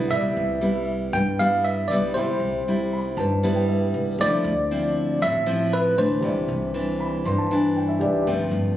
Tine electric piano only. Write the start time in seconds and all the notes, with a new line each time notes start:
0.11 E5
1.13 G5
1.39 F5
1.65 E5
1.88 D5
2.14 C5
4.21 D5
5.22 E5
5.73 B4
5.98 C5